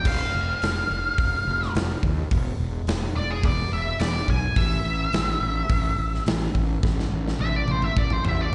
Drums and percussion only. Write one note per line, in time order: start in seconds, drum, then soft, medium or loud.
0.05 kick loud
0.05 open hi-hat medium
0.05 crash loud
0.62 snare loud
0.62 open hi-hat medium
1.18 kick loud
1.18 open hi-hat medium
1.62 snare soft
1.75 snare loud
1.75 open hi-hat medium
2.03 kick medium
2.31 kick loud
2.31 open hi-hat medium
2.87 snare loud
2.87 open hi-hat medium
3.43 kick loud
3.43 open hi-hat medium
4.00 snare loud
4.00 open hi-hat medium
4.28 kick medium
4.56 kick loud
4.56 open hi-hat medium
5.13 snare loud
5.13 open hi-hat medium
5.69 kick loud
5.69 open hi-hat medium
6.14 snare soft
6.26 snare loud
6.26 open hi-hat medium
6.55 kick medium
6.83 kick loud
6.83 snare medium
6.99 snare medium
7.28 snare medium
7.39 high tom medium
7.68 high tom medium
7.82 mid tom medium
7.97 kick loud
8.10 mid tom medium
8.25 mid tom loud